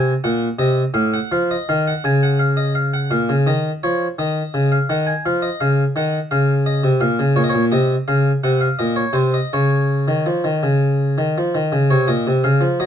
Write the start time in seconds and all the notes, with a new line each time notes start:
Already playing: C3 G#5
0.24 A#2 F#5
0.59 C3 D#5
0.94 A2 F5
1.14 F#5
1.32 F3 F5
1.51 D#5
1.69 D#3 F5
1.87 F#5
2.04 C#3 G#5
2.23 F#5
2.39 F5
2.57 D#5
2.75 F5
2.94 F#5
3.11 A#2 F5
3.29 C#3
3.47 D#3 D#5
3.83 F3 C#5
4.19 D#3 D#5
4.54 C#3
4.72 F5
4.89 D#3 F#5
5.07 G#5
5.26 F3 F5
5.42 D#5
5.61 C#3 F5
5.96 D#3 F#5
6.31 C#3 F5
6.66 D#5
6.84 C3
7.01 A#2 F5
7.19 C#3
7.36 A#2 C#5
7.44 D#5
7.49 C#5
7.55 A#2
7.72 C3 D#5
8.08 C#3 F5
8.44 C3 F#5
8.61 F5
8.79 A#2 D#5
8.96 C#5
9.13 C3 C5
9.34 D#5
9.53 C#3 C#5
10.08 D#3
10.26 F3
10.44 D#3
10.63 C#3
11.18 D#3
11.38 F3
11.55 D#3
11.72 C#3
11.90 C3 C#5
12.08 A#2 D#5
12.27 C3
12.44 C#3 F5
12.61 F3
12.80 F#3 D#5